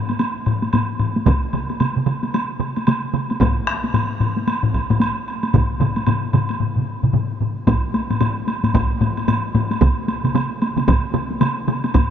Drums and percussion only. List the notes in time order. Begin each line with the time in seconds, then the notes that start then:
0.09 taiko high, high woodblock
0.19 taiko high, high woodblock
0.46 taiko low-mid, high woodblock
0.62 taiko high, high woodblock
0.73 taiko low-mid, taiko high, high woodblock
0.99 taiko low-mid, high woodblock
1.16 taiko high
1.26 taiko, taiko mid, taiko high, high woodblock
1.53 taiko mid, high woodblock
1.70 taiko high, high woodblock
1.80 taiko mid, taiko high, high woodblock
1.96 taiko mid
2.07 taiko mid, high woodblock
2.23 taiko high, high woodblock
2.34 taiko high, high woodblock
2.60 taiko mid, high woodblock
2.76 taiko high, high woodblock
2.87 taiko mid, taiko high, high woodblock
3.14 taiko mid, high woodblock
3.30 taiko high, high woodblock
3.41 taiko, taiko low-mid, taiko high, high woodblock
3.67 taiko rim, high woodblock
3.84 taiko high, high woodblock
3.94 taiko low-mid, taiko high, high woodblock
4.20 taiko low-mid, high woodblock
4.37 taiko high
4.48 taiko high, high woodblock
4.63 taiko low-mid
4.74 taiko, high woodblock
4.90 taiko low-mid, taiko high, high woodblock
5.00 taiko high, high woodblock
5.28 high woodblock
5.43 taiko high, high woodblock
5.54 taiko, taiko low-mid, taiko mid, taiko high, high woodblock
5.80 taiko low-mid, taiko mid, high woodblock
5.96 taiko high, high woodblock
6.07 taiko low-mid, taiko mid, taiko high, high woodblock
6.33 taiko low-mid, taiko mid, high woodblock
6.49 taiko high, high woodblock
6.60 taiko low-mid, taiko mid
6.76 taiko low-mid, taiko mid
7.03 taiko low-mid, taiko mid
7.13 taiko low-mid, taiko mid
7.41 taiko low-mid, taiko mid
7.67 taiko, taiko low-mid, taiko high, high woodblock
7.94 taiko high, high woodblock
8.10 taiko low-mid, taiko high, high woodblock
8.21 taiko low-mid, taiko high, high woodblock
8.48 taiko high, high woodblock
8.64 taiko low-mid, taiko high, high woodblock
8.74 taiko, taiko low-mid, taiko high, high woodblock
9.01 taiko low-mid, taiko high, high woodblock
9.17 taiko high, high woodblock
9.28 taiko low-mid, taiko high, high woodblock
9.55 taiko low-mid, taiko high, high woodblock
9.71 taiko high, high woodblock
9.81 taiko, taiko mid, taiko high, high woodblock
10.08 taiko high, high woodblock
10.24 taiko mid, taiko high, high woodblock
10.34 taiko mid, taiko high, high woodblock
10.62 taiko high, high woodblock
10.77 taiko mid, taiko high, high woodblock
10.87 taiko, taiko mid, taiko high, high woodblock
11.14 taiko mid, taiko high, high woodblock
11.31 taiko high
11.41 taiko mid, taiko high, high woodblock
11.67 taiko mid, taiko high, high woodblock
11.84 taiko high, high woodblock
11.94 taiko, taiko low-mid, taiko high, high woodblock